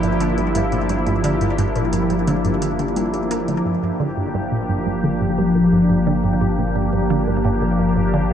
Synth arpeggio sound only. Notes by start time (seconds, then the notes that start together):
0.03 G2
0.21 D3
0.38 G2
0.55 G2
0.72 A#2
0.90 G2
1.07 G2
1.24 D3
1.41 G2
1.59 G2
1.76 A#2
1.93 G2
2.10 G2
2.28 D3
2.45 G2
2.62 D3
2.79 D3
2.96 G3
3.14 D4
3.31 A#3
3.48 D3
3.66 G2
3.83 G2
4.00 D3
4.17 G2
4.35 G2
4.52 A#2
4.69 G2
4.86 G2
5.04 D3
5.21 G2
5.38 G2
5.55 A#2
5.72 G2
5.90 G2
6.07 D3
6.24 G2
6.41 G2
6.59 A#2
6.76 G2
6.93 G2
7.10 D3
7.28 G2
7.45 G2
7.62 A#2
7.79 G2
7.96 G2
8.14 D3